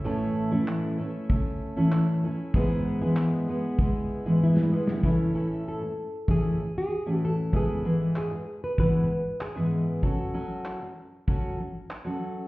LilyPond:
<<
  \new Staff \with { instrumentName = "Nylon-string guitar" } { \time 4/4 \key a \lydian \tempo 4 = 96 r1 | r2. e'4 | e'4 a'4 gis'8. gis'8. a'8 | gis'4 gis'8. b'16 b'4 gis'8. r16 |
r1 | }
  \new Staff \with { instrumentName = "Steel-string acoustic guitar" } { \time 4/4 \key a \lydian <a, e a cis' e' a'>8. <a, e a cis' e' a'>8. <a cis' e' a'>8 <a cis' e' a'>8. <a, e a cis' e' a'>8. <a cis' e' a'>8 | <gis, e gis b e' gis'>8. <gis, e gis b e' gis'>8. <gis b e' gis'>8 <gis b e' gis'>8. <gis, e gis b e' gis'>8. <gis b e' gis'>8 | <a, e a cis' e' a'>8 <a, e a cis' e' a'>8. <a, e a>8 r16 <a, e a cis' e'>8 <a, e a>8 r16 <a, e a cis' e' a'>8. | <gis, e gis b e' gis'>8 <gis, e gis b e' gis'>8. <gis, e gis>8 r16 <gis, e gis b e' gis'>8 <gis, e>8 r16 <gis, e gis b e' gis'>8. |
<fis cis' fis' a'>8 <fis cis' fis' a'>8. <fis cis'>8 r16 <fis cis' fis' a'>8 <fis cis'>8 r16 <fis cis' fis' a'>8. | }
  \new DrumStaff \with { instrumentName = "Drums" } \drummode { \time 4/4 r4 hc4 bd4 hc4 | bd4 hc4 bd4 r16 sn8 sn16 | bd4 r4 bd4 r4 | bd4 hc4 bd4 hc4 |
bd4 hc4 bd4 hc4 | }
>>